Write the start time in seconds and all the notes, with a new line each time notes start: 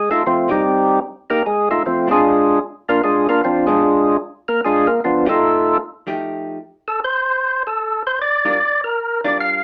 0.11 A3 D#4 F4 A4
0.26 F3 A3 C4 F4
0.48 C3 G3 A#3 C4 D#4 G4
1.30 A#3 D#4 G4 A#4
1.46 G#3 G#4
1.71 A3 D#4 F4 A4
1.86 F3 A3 C4 F4
2.07 A#2 G#3 C4 D4
2.11 G#3 D4 F4 G#4
2.88 A#3 D4 F4 A#4
3.04 G#3 D4 F4 G#4
3.29 A#3 D4 F4 A#4
3.44 F3 C4 D4 F4
3.67 B2 F3 G#3 D4 F4 G#4
4.48 A#3 A#4
4.64 G#3 D4 F4 G#4
4.87 A#3 A#4
5.04 F3 B3 D4 F4
5.25 F3 A3 D#4 G4 A4
5.29 A3 F4
6.07 F3 A3 D#4 G4
6.88 A4
7.04 C5
7.67 A4
8.07 C5
8.22 D5
8.45 G3 D4 F4 A#4
8.84 A#4
9.24 G3 D4 F4 A#4 D5
9.40 F5